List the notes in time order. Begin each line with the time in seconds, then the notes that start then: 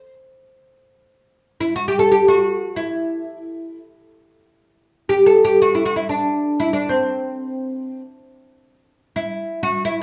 Already playing: C5
1.60 E4
1.76 F#4
1.88 G4
1.99 A4
2.12 G4
2.28 F#4
2.76 E4
5.09 G4
5.26 A4
5.45 G4
5.62 F#4
5.75 E4
5.85 F#4
5.96 E4
6.09 D4
6.60 E4
6.73 D4
6.89 C4
9.16 E4
9.63 F#4
9.85 E4